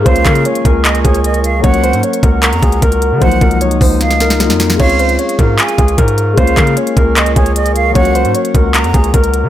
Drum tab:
CC |----------------|----------------|----------------|x---------------|
HH |xxxxxxx-xxxxxxx-|xxxxxxx-xxxxxxx-|xxxxxxo-xxxxxxx-|-xxxxxx-xxxxxxx-|
CP |--x-----x-------|--------x-------|----------------|--------x-------|
SD |----------------|----------------|--------oooooooo|----------------|
BD |o-o---o---o-----|o-----o---o-o---|o-o---o---------|o-----o---o-o---|

CC |----------------|----------------|
HH |xxxxxxx-xxxxxxx-|xxxxxxx-xxxxxxx-|
CP |--x-----x-------|--------x-------|
SD |----------------|----------------|
BD |o-o---o---o-----|o-----o---o-o---|